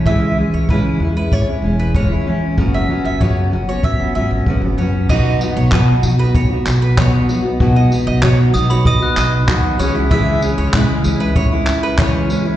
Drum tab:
CC |--------|--------|x-------|--------|
TB |--------|--------|-x-x-x-x|-x-x-x-x|
CP |--------|--------|--x--xx-|--x--xx-|
BD |o-o-o-o-|o-o-o-o-|o-o-o-o-|o-o-o-o-|

CC |--------|
TB |-x-x-x-x|
CP |--x--xx-|
BD |o-o-o-o-|